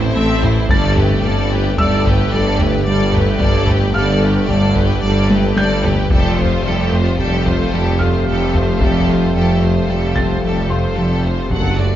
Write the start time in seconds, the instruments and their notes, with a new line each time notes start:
Already playing: detuned saw bass A1, trombone section E3 A3, viola section A3, analog synth pad A3 C4 A4 E5, french horn section C4 A4, violin section E4 C5
0.16 double bass section A1, tuba A1, cello section A2, analog synth bass A3, viola section C4, violin section A4 E5
0.42 analog synth bass A2, viola section A3, violin section E4 C5, taiko low
0.69 double bass section G1, detuned saw bass G1, tuba G1, cello section G2, analog synth bass G2, viola section G3, analog synth pad A3 A4 B4 D5, trombone section A3, french horn section G4, violin section A4 D5, felt piano A6, taiko
0.96 analog synth bass G2, viola section A3, violin section G4 B4, taiko low
1.24 double bass section G1, tuba G1, cello section G2, analog synth bass G2, viola section G3, violin section A4 D5
1.51 analog synth bass G2, viola section A3, violin section G4 B4
1.77 tuba G1, double bass section G1, cello section G2, trombone section D3, viola section G3, analog synth bass G3, french horn section B3, violin section A4 D5, felt piano E5 E6, taiko low
2.04 analog synth bass G2, viola section A3, violin section G4 B4, taiko
2.32 tuba G1, double bass section G1, cello section G2, viola section G3, analog synth bass G3, violin section A4 D5
2.58 analog synth bass G2, viola section A3, violin section G4 B4, taiko low
2.86 double bass section G1, tuba G1, cello section G2, viola section G3, analog synth bass G3, violin section A4 D5
3.13 analog synth bass G2, viola section A3, violin section G4 B4, taiko low
3.40 tuba G1, double bass section G1, analog synth bass G2, cello section G2, viola section G3, violin section A4 D5, taiko
3.67 analog synth bass G2, viola section A3, violin section G4 B4, taiko low
3.94 tuba G1, double bass section G1, analog synth bass G2, cello section G2, viola section G3, violin section A4 D5, felt piano F5 F6
4.22 analog synth bass G2, viola section A3, violin section G4 B4
4.48 tuba G1, double bass section G1, cello section G2, analog synth bass G3, viola section G3, violin section A4 D5, taiko low
4.75 analog synth bass G2, viola section A3, violin section G4 B4, taiko
5.02 tuba G1, double bass section G1, cello section G2, analog synth bass G3, viola section G3, violin section A4 D5
5.30 analog synth bass G2, viola section A3, violin section G4 B4, taiko high
5.56 tuba G1, double bass section G1, cello section G2, viola section G3, analog synth bass G3, violin section A4 D5, felt piano G6, taiko high
5.84 analog synth bass G2, viola section A3, violin section G4 B4, taiko low
6.10 tuba F1, detuned saw bass F1, double bass section F1, analog synth bass F2, cello section F2, trombone section F3 A3, viola section G3, analog synth pad G3 C4 A4 F5, french horn section C4 G4, violin section G4 A4, taiko
6.38 analog synth bass F2, viola section A3, violin section F4 C5, taiko low
6.65 tuba F1, double bass section F1, cello section F2, analog synth bass F2, viola section G3, violin section G4 A4
6.91 analog synth bass F2, viola section A3, violin section F4 C5
7.18 double bass section F1, tuba F1, cello section F2, analog synth bass F3, viola section G3, violin section G4 A4, taiko low
7.44 analog synth bass F2, viola section A3, violin section F4 C5, taiko
7.71 tuba F1, double bass section F1, cello section F2, analog synth bass F3, viola section G3, violin section G4 A4
7.99 analog synth bass F2, viola section A3, violin section F4 C5, felt piano F6, taiko low
8.27 tuba F1, double bass section F1, cello section F2, analog synth bass F3, viola section G3, violin section G4 A4
8.54 analog synth bass F2, viola section A3, violin section F4 C5, taiko low
8.81 tuba F1, double bass section F1, analog synth bass F2, cello section F2, viola section G3, violin section G4 A4, taiko
9.08 analog synth bass F2, viola section A3, violin section F4 C5
9.35 tuba F1, double bass section F1, cello section F2, analog synth bass F2, viola section G3, violin section G4 A4
9.62 analog synth bass F2, viola section A3, violin section F4 C5
9.88 double bass section F1, tuba F1, cello section F2, analog synth bass F3, viola section G3, violin section G4 A4
10.15 analog synth bass F2, viola section A3, violin section F4 C5, felt piano A5 A6, taiko
10.42 double bass section F1, tuba F1, cello section F2, analog synth bass F3, viola section G3, violin section G4 A4
10.70 analog synth bass F2, viola section A3, violin section F4 C5, felt piano C6
10.96 tuba F1, double bass section F1, cello section F2, analog synth bass F3, viola section G3, violin section G4 A4
11.23 analog synth bass F2, viola section A3, violin section F4 C5
11.50 detuned saw bass F#1, double bass section F#1, tuba F#1, cello section F#2, analog synth bass F#2, trombone section D3 A3, viola section F#3, analog synth pad A3 D4 A4 D5, french horn section D4, violin section A4 F#5, taiko
11.78 analog synth bass F#2, viola section A3, violin section F#4 D5